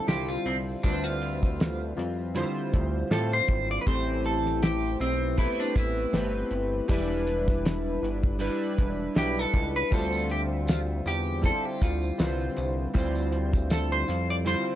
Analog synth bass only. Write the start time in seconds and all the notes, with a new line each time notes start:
0.08 C2
0.46 C2
0.84 D2
1.97 F2
2.74 D2
3.11 A2
3.49 G#1
3.87 A1
5.00 B1
5.76 A1
6.13 G1
6.51 G1
6.89 E1
8.03 G1
8.79 E1
9.16 B1
9.54 C#2
9.92 D2
11.06 E2
11.82 D2
12.20 C2
12.57 C2
12.95 D2
14.09 F2